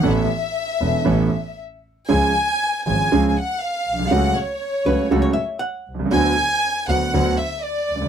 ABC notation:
X:1
M:4/4
L:1/16
Q:1/4=119
K:A
V:1 name="Violin section"
e12 z4 | g6 g3- g/2 g/2 f2 ^e4 | f2 c8 z6 | g6 f4 e2 d4 |]
V:2 name="Hollow-body jazz guitar"
z16 | z16 | z6 B2 A c e2 f3 z | z16 |]
V:3 name="Grand piano" clef=bass
[A,,,A,,E,B,CA]2 z4 [E,,,E,,E,B,CA]2 [A,,,A,,E,B,CA]2 z6 | [C,,C,^E,G,CG]2 z4 [G,,,G,,E,G,CG]2 [C,,C,E,G,CG]2 z4 z/2 _B,,,/2 =B,,,/2 =C,,/2 | [C,,C,F,A,F]2 z4 [C,,C,F,A,F]2 [C,,C,F,A,F]2 z4 z/2 B,,,/2 =C,,/2 ^C,,/2 | [D,,D,F,B,F]2 z4 [D,,D,F,B,F]2 [D,,D,F,B,F]2 z4 z/2 C,,/2 D,,/2 z/2 |]
V:4 name="Double bass" clef=bass
A,,,2 z4 E,,,2 A,,,2 z6 | C,,2 z4 G,,,2 C,,2 z4 B,,,2 | C,,2 z4 C,,2 C,,2 z4 =C,,2 | D,,2 z4 D,,2 D,,2 z4 D,,2 |]